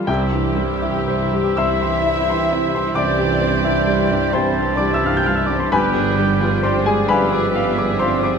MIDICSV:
0, 0, Header, 1, 13, 480
1, 0, Start_track
1, 0, Key_signature, 0, "major"
1, 0, Tempo, 985222
1, 39, Time_signature, 12, 3, 24, 8
1, 1000, Tempo, 913242
1, 4328, End_track
2, 0, Start_track
2, 0, Title_t, "Oboe"
2, 0, Program_c, 0, 68
2, 39, Note_on_c, 0, 76, 54
2, 1471, Note_on_c, 0, 79, 59
2, 1479, Note_off_c, 0, 76, 0
2, 2199, Note_off_c, 0, 79, 0
2, 2204, Note_on_c, 0, 81, 57
2, 2915, Note_off_c, 0, 81, 0
2, 2927, Note_on_c, 0, 79, 63
2, 3485, Note_off_c, 0, 79, 0
2, 3648, Note_on_c, 0, 76, 66
2, 4328, Note_off_c, 0, 76, 0
2, 4328, End_track
3, 0, Start_track
3, 0, Title_t, "Flute"
3, 0, Program_c, 1, 73
3, 36, Note_on_c, 1, 67, 54
3, 767, Note_on_c, 1, 76, 60
3, 774, Note_off_c, 1, 67, 0
3, 1338, Note_off_c, 1, 76, 0
3, 1474, Note_on_c, 1, 74, 57
3, 2201, Note_on_c, 1, 72, 54
3, 2209, Note_off_c, 1, 74, 0
3, 2421, Note_on_c, 1, 74, 52
3, 2429, Note_off_c, 1, 72, 0
3, 2511, Note_on_c, 1, 76, 47
3, 2519, Note_off_c, 1, 74, 0
3, 2586, Note_on_c, 1, 77, 42
3, 2594, Note_off_c, 1, 76, 0
3, 2646, Note_on_c, 1, 79, 44
3, 2654, Note_off_c, 1, 77, 0
3, 2694, Note_on_c, 1, 77, 42
3, 2702, Note_off_c, 1, 79, 0
3, 2739, Note_on_c, 1, 76, 43
3, 2747, Note_off_c, 1, 77, 0
3, 2792, Note_on_c, 1, 74, 35
3, 2800, Note_off_c, 1, 76, 0
3, 2846, Note_on_c, 1, 72, 46
3, 2854, Note_off_c, 1, 74, 0
3, 2915, Note_on_c, 1, 71, 56
3, 2923, Note_off_c, 1, 72, 0
3, 3395, Note_off_c, 1, 71, 0
3, 3398, Note_on_c, 1, 72, 58
3, 3519, Note_on_c, 1, 68, 51
3, 3527, Note_off_c, 1, 72, 0
3, 3633, Note_on_c, 1, 71, 59
3, 3641, Note_off_c, 1, 68, 0
3, 4119, Note_on_c, 1, 72, 66
3, 4127, Note_off_c, 1, 71, 0
3, 4328, Note_off_c, 1, 72, 0
3, 4328, End_track
4, 0, Start_track
4, 0, Title_t, "Grand piano"
4, 0, Program_c, 2, 0
4, 0, Control_c, 2, 64, 127
4, 0, Note_on_c, 2, 52, 25
4, 0, Note_on_c, 2, 55, 28
4, 0, Note_on_c, 2, 65, 28
4, 0, Note_on_c, 2, 67, 31
4, 0, Note_on_c, 2, 69, 29
4, 0, Note_on_c, 2, 72, 28
4, 0, Note_on_c, 2, 77, 33
4, 0, Note_on_c, 2, 81, 35
4, 35, Note_on_c, 2, 36, 51
4, 35, Note_on_c, 2, 79, 61
4, 41, Note_off_c, 2, 67, 0
4, 41, Note_on_c, 2, 67, 45
4, 42, Note_on_c, 2, 76, 44
4, 49, Control_c, 2, 64, 0
4, 50, Note_off_c, 2, 72, 0
4, 51, Note_off_c, 2, 52, 0
4, 51, Note_off_c, 2, 65, 0
4, 52, Note_off_c, 2, 69, 0
4, 53, Note_off_c, 2, 55, 0
4, 53, Note_off_c, 2, 77, 0
4, 54, Note_off_c, 2, 81, 0
4, 127, Control_c, 2, 64, 127
4, 155, Note_on_c, 2, 43, 36
4, 275, Note_on_c, 2, 55, 40
4, 351, Note_off_c, 2, 43, 0
4, 400, Note_on_c, 2, 64, 38
4, 475, Note_off_c, 2, 55, 0
4, 525, Note_on_c, 2, 72, 44
4, 600, Note_off_c, 2, 64, 0
4, 646, Note_off_c, 2, 67, 0
4, 653, Note_on_c, 2, 67, 42
4, 722, Note_off_c, 2, 72, 0
4, 749, Note_off_c, 2, 79, 0
4, 753, Note_off_c, 2, 76, 0
4, 765, Note_on_c, 2, 88, 65
4, 771, Note_on_c, 2, 76, 44
4, 772, Note_on_c, 2, 84, 48
4, 842, Note_off_c, 2, 67, 0
4, 878, Note_off_c, 2, 84, 0
4, 885, Note_on_c, 2, 84, 43
4, 997, Note_off_c, 2, 76, 0
4, 1005, Note_on_c, 2, 76, 45
4, 1072, Note_off_c, 2, 84, 0
4, 1127, Note_on_c, 2, 84, 51
4, 1194, Note_off_c, 2, 76, 0
4, 1249, Note_on_c, 2, 76, 44
4, 1314, Note_off_c, 2, 84, 0
4, 1366, Note_on_c, 2, 84, 46
4, 1434, Note_off_c, 2, 76, 0
4, 1452, Note_off_c, 2, 88, 0
4, 1474, Note_on_c, 2, 86, 65
4, 1480, Note_on_c, 2, 74, 48
4, 1482, Note_on_c, 2, 76, 44
4, 1551, Note_off_c, 2, 84, 0
4, 1597, Note_on_c, 2, 67, 43
4, 1669, Note_off_c, 2, 76, 0
4, 1716, Note_on_c, 2, 72, 45
4, 1787, Note_off_c, 2, 67, 0
4, 1837, Note_on_c, 2, 64, 50
4, 1908, Note_off_c, 2, 72, 0
4, 1955, Note_on_c, 2, 55, 44
4, 2030, Note_off_c, 2, 64, 0
4, 2081, Note_on_c, 2, 43, 40
4, 2152, Note_off_c, 2, 55, 0
4, 2179, Note_off_c, 2, 86, 0
4, 2182, Note_off_c, 2, 74, 0
4, 2198, Note_on_c, 2, 84, 67
4, 2206, Note_on_c, 2, 55, 43
4, 2206, Note_on_c, 2, 72, 49
4, 2207, Note_on_c, 2, 79, 44
4, 2277, Note_off_c, 2, 43, 0
4, 2326, Note_on_c, 2, 43, 34
4, 2401, Note_off_c, 2, 55, 0
4, 2406, Note_off_c, 2, 84, 0
4, 2410, Note_off_c, 2, 72, 0
4, 2411, Note_off_c, 2, 79, 0
4, 2429, Note_on_c, 2, 86, 55
4, 2433, Note_on_c, 2, 74, 43
4, 2449, Note_on_c, 2, 55, 40
4, 2514, Note_off_c, 2, 86, 0
4, 2516, Note_off_c, 2, 74, 0
4, 2518, Note_on_c, 2, 88, 57
4, 2521, Note_off_c, 2, 43, 0
4, 2525, Note_on_c, 2, 76, 47
4, 2569, Note_on_c, 2, 43, 39
4, 2580, Note_on_c, 2, 89, 49
4, 2583, Note_off_c, 2, 88, 0
4, 2587, Note_off_c, 2, 76, 0
4, 2635, Note_off_c, 2, 89, 0
4, 2638, Note_on_c, 2, 91, 50
4, 2642, Note_off_c, 2, 55, 0
4, 2686, Note_off_c, 2, 91, 0
4, 2687, Note_on_c, 2, 89, 51
4, 2691, Note_on_c, 2, 55, 38
4, 2735, Note_off_c, 2, 89, 0
4, 2735, Note_on_c, 2, 88, 45
4, 2762, Note_off_c, 2, 43, 0
4, 2790, Note_off_c, 2, 88, 0
4, 2793, Note_on_c, 2, 86, 46
4, 2806, Note_on_c, 2, 43, 40
4, 2854, Note_off_c, 2, 86, 0
4, 2863, Note_on_c, 2, 84, 48
4, 2881, Note_off_c, 2, 55, 0
4, 2905, Note_off_c, 2, 36, 0
4, 2920, Note_off_c, 2, 43, 0
4, 2925, Note_off_c, 2, 84, 0
4, 2928, Note_on_c, 2, 43, 55
4, 2928, Note_on_c, 2, 83, 69
4, 2931, Note_on_c, 2, 80, 52
4, 2932, Note_on_c, 2, 71, 49
4, 2938, Control_c, 2, 64, 0
4, 3025, Control_c, 2, 64, 127
4, 3047, Note_on_c, 2, 50, 38
4, 3166, Note_on_c, 2, 55, 43
4, 3238, Note_off_c, 2, 50, 0
4, 3289, Note_on_c, 2, 65, 42
4, 3357, Note_off_c, 2, 55, 0
4, 3384, Note_off_c, 2, 83, 0
4, 3386, Note_off_c, 2, 71, 0
4, 3386, Note_off_c, 2, 80, 0
4, 3407, Note_on_c, 2, 84, 59
4, 3408, Note_on_c, 2, 74, 51
4, 3414, Note_on_c, 2, 72, 44
4, 3479, Note_off_c, 2, 65, 0
4, 3517, Note_off_c, 2, 84, 0
4, 3521, Note_off_c, 2, 72, 0
4, 3527, Note_on_c, 2, 80, 60
4, 3529, Note_on_c, 2, 67, 43
4, 3534, Note_on_c, 2, 68, 43
4, 3598, Note_off_c, 2, 74, 0
4, 3637, Note_off_c, 2, 80, 0
4, 3640, Note_off_c, 2, 68, 0
4, 3646, Note_on_c, 2, 83, 71
4, 3647, Note_on_c, 2, 77, 50
4, 3653, Note_on_c, 2, 71, 48
4, 3653, Note_on_c, 2, 80, 47
4, 3717, Note_off_c, 2, 67, 0
4, 3772, Note_on_c, 2, 86, 47
4, 3836, Note_off_c, 2, 77, 0
4, 3892, Note_on_c, 2, 77, 49
4, 3959, Note_off_c, 2, 86, 0
4, 4012, Note_on_c, 2, 86, 49
4, 4079, Note_off_c, 2, 77, 0
4, 4102, Note_off_c, 2, 83, 0
4, 4106, Note_off_c, 2, 71, 0
4, 4106, Note_off_c, 2, 80, 0
4, 4123, Note_on_c, 2, 84, 64
4, 4129, Note_on_c, 2, 72, 53
4, 4129, Note_on_c, 2, 77, 43
4, 4200, Note_off_c, 2, 86, 0
4, 4249, Note_on_c, 2, 86, 51
4, 4318, Note_off_c, 2, 77, 0
4, 4328, Note_off_c, 2, 43, 0
4, 4328, Note_off_c, 2, 72, 0
4, 4328, Note_off_c, 2, 84, 0
4, 4328, Note_off_c, 2, 86, 0
4, 4328, End_track
5, 0, Start_track
5, 0, Title_t, "Violin section"
5, 0, Program_c, 3, 48
5, 39, Note_on_c, 3, 67, 57
5, 771, Note_off_c, 3, 67, 0
5, 772, Note_on_c, 3, 76, 66
5, 1477, Note_off_c, 3, 76, 0
5, 1479, Note_on_c, 3, 74, 68
5, 2188, Note_off_c, 3, 74, 0
5, 2201, Note_on_c, 3, 72, 57
5, 2421, Note_on_c, 3, 74, 51
5, 2423, Note_off_c, 3, 72, 0
5, 2510, Note_on_c, 3, 76, 47
5, 2516, Note_off_c, 3, 74, 0
5, 2584, Note_off_c, 3, 76, 0
5, 2588, Note_on_c, 3, 77, 46
5, 2638, Note_on_c, 3, 79, 49
5, 2644, Note_off_c, 3, 77, 0
5, 2688, Note_on_c, 3, 77, 38
5, 2689, Note_off_c, 3, 79, 0
5, 2738, Note_on_c, 3, 76, 41
5, 2739, Note_off_c, 3, 77, 0
5, 2788, Note_on_c, 3, 74, 42
5, 2795, Note_off_c, 3, 76, 0
5, 2855, Note_on_c, 3, 72, 46
5, 2856, Note_off_c, 3, 74, 0
5, 2920, Note_on_c, 3, 71, 63
5, 2926, Note_off_c, 3, 72, 0
5, 3400, Note_on_c, 3, 72, 53
5, 3401, Note_off_c, 3, 71, 0
5, 3513, Note_on_c, 3, 68, 54
5, 3522, Note_off_c, 3, 72, 0
5, 3637, Note_on_c, 3, 71, 65
5, 3638, Note_off_c, 3, 68, 0
5, 4119, Note_off_c, 3, 71, 0
5, 4120, Note_on_c, 3, 72, 56
5, 4328, Note_off_c, 3, 72, 0
5, 4328, End_track
6, 0, Start_track
6, 0, Title_t, "Trumpet"
6, 0, Program_c, 4, 56
6, 40, Note_on_c, 4, 72, 46
6, 2908, Note_off_c, 4, 72, 0
6, 2927, Note_on_c, 4, 74, 52
6, 4328, Note_off_c, 4, 74, 0
6, 4328, End_track
7, 0, Start_track
7, 0, Title_t, "Violin section"
7, 0, Program_c, 5, 48
7, 36, Note_on_c, 5, 64, 42
7, 148, Note_off_c, 5, 64, 0
7, 153, Note_on_c, 5, 67, 38
7, 272, Note_on_c, 5, 64, 35
7, 277, Note_off_c, 5, 67, 0
7, 399, Note_off_c, 5, 64, 0
7, 399, Note_on_c, 5, 67, 38
7, 525, Note_on_c, 5, 64, 37
7, 526, Note_off_c, 5, 67, 0
7, 641, Note_off_c, 5, 64, 0
7, 654, Note_on_c, 5, 67, 39
7, 772, Note_off_c, 5, 67, 0
7, 773, Note_on_c, 5, 64, 47
7, 888, Note_off_c, 5, 64, 0
7, 893, Note_on_c, 5, 67, 42
7, 1003, Note_off_c, 5, 67, 0
7, 1011, Note_on_c, 5, 64, 38
7, 1118, Note_off_c, 5, 64, 0
7, 1133, Note_on_c, 5, 67, 38
7, 1246, Note_off_c, 5, 67, 0
7, 1251, Note_on_c, 5, 64, 41
7, 1364, Note_off_c, 5, 64, 0
7, 1372, Note_on_c, 5, 67, 38
7, 1483, Note_off_c, 5, 67, 0
7, 1486, Note_on_c, 5, 64, 44
7, 1592, Note_off_c, 5, 64, 0
7, 1605, Note_on_c, 5, 67, 41
7, 1719, Note_off_c, 5, 67, 0
7, 1721, Note_on_c, 5, 64, 36
7, 1837, Note_off_c, 5, 64, 0
7, 1840, Note_on_c, 5, 67, 38
7, 1959, Note_off_c, 5, 67, 0
7, 1961, Note_on_c, 5, 64, 40
7, 2072, Note_off_c, 5, 64, 0
7, 2082, Note_on_c, 5, 67, 36
7, 2204, Note_off_c, 5, 67, 0
7, 2204, Note_on_c, 5, 64, 40
7, 2326, Note_off_c, 5, 64, 0
7, 2333, Note_on_c, 5, 67, 39
7, 2450, Note_on_c, 5, 64, 36
7, 2452, Note_off_c, 5, 67, 0
7, 2562, Note_off_c, 5, 64, 0
7, 2573, Note_on_c, 5, 67, 38
7, 2692, Note_off_c, 5, 67, 0
7, 2693, Note_on_c, 5, 64, 40
7, 2811, Note_off_c, 5, 64, 0
7, 2815, Note_on_c, 5, 67, 40
7, 2926, Note_off_c, 5, 67, 0
7, 2932, Note_on_c, 5, 67, 48
7, 3041, Note_off_c, 5, 67, 0
7, 3051, Note_on_c, 5, 68, 42
7, 3167, Note_on_c, 5, 67, 38
7, 3168, Note_off_c, 5, 68, 0
7, 3286, Note_off_c, 5, 67, 0
7, 3286, Note_on_c, 5, 68, 43
7, 3402, Note_on_c, 5, 67, 45
7, 3405, Note_off_c, 5, 68, 0
7, 3515, Note_off_c, 5, 67, 0
7, 3521, Note_on_c, 5, 68, 42
7, 3639, Note_on_c, 5, 67, 47
7, 3642, Note_off_c, 5, 68, 0
7, 3756, Note_on_c, 5, 68, 47
7, 3760, Note_off_c, 5, 67, 0
7, 3875, Note_on_c, 5, 67, 45
7, 3879, Note_off_c, 5, 68, 0
7, 3990, Note_off_c, 5, 67, 0
7, 4003, Note_on_c, 5, 68, 41
7, 4120, Note_on_c, 5, 67, 47
7, 4123, Note_off_c, 5, 68, 0
7, 4238, Note_on_c, 5, 68, 40
7, 4241, Note_off_c, 5, 67, 0
7, 4328, Note_off_c, 5, 68, 0
7, 4328, End_track
8, 0, Start_track
8, 0, Title_t, "Cello section"
8, 0, Program_c, 6, 48
8, 41, Note_on_c, 6, 55, 56
8, 757, Note_off_c, 6, 55, 0
8, 773, Note_on_c, 6, 64, 55
8, 1478, Note_off_c, 6, 64, 0
8, 1478, Note_on_c, 6, 62, 53
8, 2202, Note_off_c, 6, 62, 0
8, 2205, Note_on_c, 6, 60, 56
8, 2420, Note_off_c, 6, 60, 0
8, 2425, Note_on_c, 6, 62, 52
8, 2516, Note_on_c, 6, 64, 55
8, 2518, Note_off_c, 6, 62, 0
8, 2587, Note_off_c, 6, 64, 0
8, 2588, Note_on_c, 6, 65, 44
8, 2642, Note_on_c, 6, 67, 42
8, 2644, Note_off_c, 6, 65, 0
8, 2691, Note_off_c, 6, 67, 0
8, 2693, Note_on_c, 6, 65, 40
8, 2742, Note_off_c, 6, 65, 0
8, 2742, Note_on_c, 6, 64, 39
8, 2798, Note_off_c, 6, 64, 0
8, 2798, Note_on_c, 6, 62, 43
8, 2860, Note_on_c, 6, 60, 42
8, 2861, Note_off_c, 6, 62, 0
8, 2924, Note_on_c, 6, 59, 61
8, 2927, Note_off_c, 6, 60, 0
8, 3393, Note_off_c, 6, 59, 0
8, 3403, Note_on_c, 6, 60, 58
8, 3524, Note_off_c, 6, 60, 0
8, 3524, Note_on_c, 6, 56, 52
8, 3641, Note_off_c, 6, 56, 0
8, 3644, Note_on_c, 6, 59, 52
8, 4121, Note_on_c, 6, 60, 53
8, 4122, Note_off_c, 6, 59, 0
8, 4328, Note_off_c, 6, 60, 0
8, 4328, End_track
9, 0, Start_track
9, 0, Title_t, "French horn section"
9, 0, Program_c, 7, 60
9, 42, Note_on_c, 7, 67, 45
9, 43, Note_on_c, 7, 55, 45
9, 2908, Note_off_c, 7, 67, 0
9, 2909, Note_off_c, 7, 55, 0
9, 2929, Note_on_c, 7, 67, 44
9, 2930, Note_on_c, 7, 55, 47
9, 4328, Note_off_c, 7, 55, 0
9, 4328, Note_off_c, 7, 67, 0
9, 4328, End_track
10, 0, Start_track
10, 0, Title_t, "Viola section"
10, 0, Program_c, 8, 48
10, 40, Note_on_c, 8, 55, 43
10, 41, Note_on_c, 8, 60, 44
10, 150, Note_off_c, 8, 55, 0
10, 150, Note_off_c, 8, 60, 0
10, 153, Note_on_c, 8, 64, 39
10, 155, Note_on_c, 8, 52, 36
10, 277, Note_off_c, 8, 64, 0
10, 278, Note_off_c, 8, 52, 0
10, 278, Note_on_c, 8, 60, 38
10, 279, Note_on_c, 8, 55, 37
10, 402, Note_off_c, 8, 60, 0
10, 403, Note_off_c, 8, 55, 0
10, 403, Note_on_c, 8, 64, 34
10, 404, Note_on_c, 8, 52, 36
10, 528, Note_off_c, 8, 52, 0
10, 528, Note_off_c, 8, 64, 0
10, 529, Note_on_c, 8, 60, 42
10, 530, Note_on_c, 8, 55, 45
10, 643, Note_off_c, 8, 60, 0
10, 644, Note_off_c, 8, 55, 0
10, 646, Note_on_c, 8, 52, 39
10, 647, Note_on_c, 8, 64, 37
10, 768, Note_off_c, 8, 52, 0
10, 769, Note_off_c, 8, 64, 0
10, 769, Note_on_c, 8, 55, 40
10, 769, Note_on_c, 8, 60, 40
10, 886, Note_off_c, 8, 55, 0
10, 886, Note_off_c, 8, 60, 0
10, 887, Note_on_c, 8, 52, 36
10, 888, Note_on_c, 8, 64, 34
10, 1000, Note_off_c, 8, 52, 0
10, 1001, Note_off_c, 8, 64, 0
10, 1001, Note_on_c, 8, 55, 38
10, 1002, Note_on_c, 8, 60, 35
10, 1113, Note_off_c, 8, 55, 0
10, 1113, Note_off_c, 8, 60, 0
10, 1120, Note_on_c, 8, 64, 39
10, 1121, Note_on_c, 8, 52, 35
10, 1239, Note_off_c, 8, 64, 0
10, 1239, Note_on_c, 8, 55, 36
10, 1240, Note_off_c, 8, 52, 0
10, 1242, Note_on_c, 8, 60, 42
10, 1356, Note_on_c, 8, 52, 39
10, 1358, Note_off_c, 8, 55, 0
10, 1358, Note_on_c, 8, 64, 39
10, 1359, Note_off_c, 8, 60, 0
10, 1476, Note_off_c, 8, 52, 0
10, 1476, Note_on_c, 8, 55, 43
10, 1477, Note_off_c, 8, 64, 0
10, 1479, Note_on_c, 8, 60, 43
10, 1586, Note_off_c, 8, 55, 0
10, 1588, Note_off_c, 8, 60, 0
10, 1600, Note_on_c, 8, 64, 40
10, 1601, Note_on_c, 8, 52, 38
10, 1714, Note_on_c, 8, 55, 35
10, 1716, Note_off_c, 8, 64, 0
10, 1717, Note_off_c, 8, 52, 0
10, 1717, Note_on_c, 8, 60, 38
10, 1834, Note_off_c, 8, 55, 0
10, 1835, Note_off_c, 8, 60, 0
10, 1835, Note_on_c, 8, 64, 37
10, 1836, Note_on_c, 8, 52, 39
10, 1954, Note_on_c, 8, 60, 42
10, 1955, Note_on_c, 8, 55, 42
10, 1956, Note_off_c, 8, 52, 0
10, 1956, Note_off_c, 8, 64, 0
10, 2069, Note_off_c, 8, 55, 0
10, 2069, Note_off_c, 8, 60, 0
10, 2083, Note_on_c, 8, 52, 34
10, 2083, Note_on_c, 8, 64, 38
10, 2203, Note_on_c, 8, 55, 37
10, 2203, Note_on_c, 8, 60, 39
10, 2204, Note_off_c, 8, 52, 0
10, 2204, Note_off_c, 8, 64, 0
10, 2326, Note_off_c, 8, 55, 0
10, 2326, Note_off_c, 8, 60, 0
10, 2329, Note_on_c, 8, 64, 38
10, 2331, Note_on_c, 8, 52, 38
10, 2450, Note_off_c, 8, 64, 0
10, 2450, Note_on_c, 8, 60, 39
10, 2451, Note_off_c, 8, 52, 0
10, 2452, Note_on_c, 8, 55, 41
10, 2562, Note_off_c, 8, 60, 0
10, 2563, Note_off_c, 8, 55, 0
10, 2569, Note_on_c, 8, 64, 39
10, 2570, Note_on_c, 8, 52, 37
10, 2689, Note_off_c, 8, 64, 0
10, 2689, Note_on_c, 8, 55, 37
10, 2690, Note_off_c, 8, 52, 0
10, 2690, Note_on_c, 8, 60, 38
10, 2807, Note_on_c, 8, 64, 38
10, 2809, Note_off_c, 8, 55, 0
10, 2809, Note_off_c, 8, 60, 0
10, 2809, Note_on_c, 8, 52, 37
10, 2925, Note_on_c, 8, 62, 44
10, 2927, Note_off_c, 8, 64, 0
10, 2927, Note_on_c, 8, 55, 44
10, 2928, Note_off_c, 8, 52, 0
10, 3037, Note_off_c, 8, 62, 0
10, 3038, Note_off_c, 8, 55, 0
10, 3041, Note_on_c, 8, 59, 39
10, 3042, Note_on_c, 8, 53, 40
10, 3163, Note_off_c, 8, 53, 0
10, 3163, Note_off_c, 8, 59, 0
10, 3166, Note_on_c, 8, 55, 44
10, 3167, Note_on_c, 8, 62, 42
10, 3282, Note_on_c, 8, 53, 38
10, 3284, Note_on_c, 8, 59, 37
10, 3285, Note_off_c, 8, 55, 0
10, 3286, Note_off_c, 8, 62, 0
10, 3403, Note_off_c, 8, 53, 0
10, 3404, Note_off_c, 8, 59, 0
10, 3404, Note_on_c, 8, 55, 41
10, 3405, Note_on_c, 8, 62, 45
10, 3515, Note_off_c, 8, 55, 0
10, 3516, Note_off_c, 8, 62, 0
10, 3519, Note_on_c, 8, 53, 42
10, 3520, Note_on_c, 8, 59, 41
10, 3641, Note_off_c, 8, 53, 0
10, 3641, Note_off_c, 8, 59, 0
10, 3643, Note_on_c, 8, 55, 38
10, 3644, Note_on_c, 8, 62, 39
10, 3761, Note_on_c, 8, 53, 36
10, 3763, Note_off_c, 8, 55, 0
10, 3763, Note_off_c, 8, 62, 0
10, 3763, Note_on_c, 8, 59, 36
10, 3881, Note_on_c, 8, 55, 44
10, 3882, Note_off_c, 8, 53, 0
10, 3882, Note_on_c, 8, 62, 40
10, 3883, Note_off_c, 8, 59, 0
10, 3993, Note_off_c, 8, 55, 0
10, 3994, Note_off_c, 8, 62, 0
10, 4001, Note_on_c, 8, 53, 39
10, 4001, Note_on_c, 8, 59, 40
10, 4119, Note_on_c, 8, 55, 42
10, 4120, Note_on_c, 8, 62, 46
10, 4122, Note_off_c, 8, 53, 0
10, 4122, Note_off_c, 8, 59, 0
10, 4239, Note_on_c, 8, 53, 43
10, 4240, Note_on_c, 8, 59, 41
10, 4241, Note_off_c, 8, 55, 0
10, 4241, Note_off_c, 8, 62, 0
10, 4328, Note_off_c, 8, 53, 0
10, 4328, Note_off_c, 8, 59, 0
10, 4328, End_track
11, 0, Start_track
11, 0, Title_t, "Trombone section"
11, 0, Program_c, 10, 61
11, 40, Note_on_c, 10, 52, 51
11, 43, Note_on_c, 10, 43, 47
11, 2907, Note_off_c, 10, 52, 0
11, 2909, Note_off_c, 10, 43, 0
11, 2929, Note_on_c, 10, 53, 54
11, 2930, Note_on_c, 10, 44, 52
11, 4328, Note_off_c, 10, 44, 0
11, 4328, Note_off_c, 10, 53, 0
11, 4328, End_track
12, 0, Start_track
12, 0, Title_t, "Double bass section"
12, 0, Program_c, 11, 48
12, 36, Note_on_c, 11, 36, 57
12, 684, Note_off_c, 11, 36, 0
12, 765, Note_on_c, 11, 36, 47
12, 1389, Note_off_c, 11, 36, 0
12, 1474, Note_on_c, 11, 36, 57
12, 2113, Note_off_c, 11, 36, 0
12, 2198, Note_on_c, 11, 36, 59
12, 2842, Note_off_c, 11, 36, 0
12, 2927, Note_on_c, 11, 31, 59
12, 3559, Note_off_c, 11, 31, 0
12, 3638, Note_on_c, 11, 31, 53
12, 4275, Note_off_c, 11, 31, 0
12, 4328, End_track
13, 0, Start_track
13, 0, Title_t, "Tuba"
13, 0, Program_c, 12, 58
13, 37, Note_on_c, 12, 36, 54
13, 685, Note_off_c, 12, 36, 0
13, 767, Note_on_c, 12, 36, 50
13, 1391, Note_off_c, 12, 36, 0
13, 1473, Note_on_c, 12, 36, 61
13, 2113, Note_off_c, 12, 36, 0
13, 2200, Note_on_c, 12, 36, 51
13, 2843, Note_off_c, 12, 36, 0
13, 2926, Note_on_c, 12, 31, 52
13, 3558, Note_off_c, 12, 31, 0
13, 3642, Note_on_c, 12, 31, 64
13, 4277, Note_off_c, 12, 31, 0
13, 4328, End_track
0, 0, End_of_file